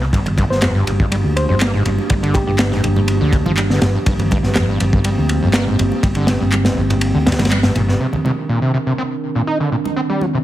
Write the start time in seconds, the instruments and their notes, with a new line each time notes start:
0.02 acid bass C3
0.13 fingered electric bass G1, acid bass G2, ambient pad F3 A#3 D4 G4, kick, ride
0.26 acid bass G1, ride, low conga
0.38 acid bass G2, kick, ride, muted conga
0.50 fingered electric bass G1, soft synth lead C5, snare
0.62 acid bass F2, snare, clap, ride
0.75 acid bass G2
0.86 fingered electric bass G1, acid bass G2, ride
1.00 acid bass G2, kick
1.12 acid bass G3, ride
1.24 fingered electric bass D2
1.36 soft synth lead C5, ride
1.49 fingered electric bass G1, acid bass F2, soft synth lead C5
1.61 acid bass A#3, snare, clap, ride
1.74 acid bass G#2
1.85 fingered electric bass G1, acid bass F2, ride
1.98 muted conga
2.10 fingered electric bass G1, acid bass G3, kick, ride
2.23 acid bass D3, ride
2.34 acid bass C3, soft synth lead G4, kick, ride, muted conga
2.47 fingered electric bass G1, acid bass G2, soft synth lead G4
2.59 snare, clap, ride
2.72 acid bass G#2, snare
2.84 fingered electric bass G1, acid bass F2, ride
2.96 acid bass G2, muted conga
3.08 ride
3.21 fingered electric bass D2, acid bass D3
3.32 acid bass C3, kick, ride
3.45 fingered electric bass G1, acid bass F3, muted conga, low conga
3.57 acid bass G3, clap, ride
3.70 acid bass D3, snare
3.82 fingered electric bass G1, acid bass G2, snare, ride
3.95 acid bass G2
4.06 fingered electric bass G1, acid bass G2, ambient pad C4, kick, ride
4.19 acid bass G1, ride, low conga
4.31 acid bass G2, kick, ride, muted conga
4.43 fingered electric bass G1, snare
4.55 acid bass F2, snare, clap, ride
4.69 acid bass G2
4.80 fingered electric bass G1, acid bass G2, ride
4.93 acid bass G2, kick
5.04 acid bass G3, ride
5.18 fingered electric bass D2
5.29 ride
5.43 fingered electric bass G1, acid bass F2
5.53 acid bass A#3, snare, clap, ride
5.67 acid bass G#2
5.79 fingered electric bass G1, acid bass F2, ride
5.92 muted conga
6.03 fingered electric bass G1, acid bass G3, kick, ride
6.15 acid bass D3, ride
6.27 acid bass C3, snare, ride, muted conga
6.40 fingered electric bass G1, acid bass G2
6.52 clap, ride, high conga
6.65 acid bass G#2, snare, ride
6.77 fingered electric bass G1, acid bass F2
6.90 acid bass G2, ride, muted conga
7.01 ride
7.14 fingered electric bass D2, acid bass D3
7.26 acid bass G2, snare, ride
7.32 snare, ride
7.39 fingered electric bass G1, acid bass G3, snare, ride, muted conga, low conga
7.45 snare, ride
7.51 acid bass G3, clap, ride
7.63 acid bass G2, snare, ride, high conga
7.75 fingered electric bass G1, acid bass A#2, ride, muted conga
7.89 acid bass G2, snare
8.00 acid bass C3, ambient pad D#3 C4 D4 A#4
8.13 acid bass C2, low conga
8.25 acid bass C3, muted conga
8.49 acid bass A#2
8.62 acid bass C3
8.74 acid bass C3
8.87 acid bass C3
8.98 acid bass C4
9.36 acid bass A#2
9.47 acid bass D#4
9.60 acid bass D3
9.72 acid bass A#2
9.85 muted conga
9.96 acid bass C4
10.10 acid bass G3
10.21 acid bass F3, muted conga
10.35 acid bass C3